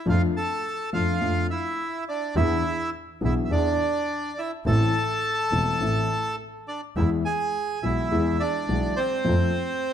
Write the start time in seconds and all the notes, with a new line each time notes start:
0.06 F2 F3 A3 D4 A4 F5
0.10 F4
0.37 A4 A5
0.93 F2 F3 A3 D4 F4 A4 F5
1.21 F2 F3 A3 D4 A4
1.51 E4 E5
2.09 D4 D5
2.36 E2 E3 B3 D4 E4 G#4 E5
3.21 B1 B2 E3 B3 D4 E4 G#4
3.25 E5
3.45 E5
3.49 E2 E3 B3 D4 G#4 D5
4.39 E4 E5
4.65 A1 A2 E3 A3 C4 A4 A5
5.52 E1 E2 E3 A3 C4 A4
5.81 A1 A2 E3 A3 C4 A4
6.68 D4 D5
6.96 E2 E3 G#3 B3 E4 G#4 E5
7.25 G#4 G#5
7.83 B1 B2 E3 G#3 B3 E4 G#4 E5
8.11 E2 E3 G#3 B3 G#4
8.40 D4 D5
8.69 B1 B2 E3 G#3 B3 G#4
8.96 C4 C5
9.24 F2 F3 A3 C4 A4